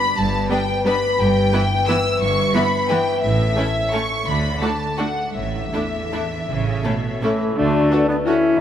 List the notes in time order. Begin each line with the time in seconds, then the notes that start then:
Already playing: G2 B3 D4 D5 B5
0.02 B4
0.17 G1 G2 A5
0.33 B3
0.50 G3 B3 D4 B4 D5 G5
0.69 B4
0.84 G3 B3 D4 B4 D5 B5
1.03 B4
1.19 G1 G2 G5
1.36 B3
1.52 E3 B3 E4 B4
1.71 E4
1.86 E3 B3 E4 B4 E5 E6
2.05 B4
2.21 G1 G2 C#6
2.38 B3
2.54 E3 B3 E4 B4 B5
2.72 E4
2.88 E3 B3 E4 B4 E5 G5
3.07 B4
3.22 A1 A2 E5
3.40 C#4
3.57 A3 C#4 E4 A4
3.75 C#5
3.92 A3 C#4 E4 A4 C#6
4.11 C#5
4.26 D2 D3 B5
4.44 D4
4.61 A3 D4 F#4 A4 A5
4.80 D5
4.97 A3 D4 F#4 A4 F#5
5.17 D5
5.36 A1 A2 E5
5.54 D4
5.73 E2 A3 D4 E4 A4
5.94 D5
6.12 A3 D4 E4 A4
6.30 D5
6.48 A1 A2 C#3
6.66 C#4
6.84 B2 A3 C#4 E4 A4
7.05 C#5
7.22 A2 E3 A3 C#4 E4 A4 E5
7.42 C#5
7.58 D2 D3 A3 D4 F#4 D5
7.91 F#4 A4 B4 F#5
8.09 B3 D4 A4 D5
8.26 C#4 E4 F#4 A4 E5 F#5
8.43 D4